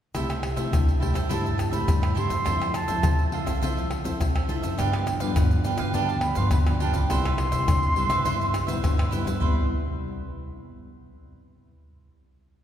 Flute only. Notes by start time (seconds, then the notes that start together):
1.00 G5
1.31 A5
1.73 B5
2.17 C6
2.76 A5
3.34 F5
5.65 G5
5.95 A5
6.23 B5
6.37 C6
6.52 B5
6.82 A5
6.96 B5
7.10 C6
9.41 C6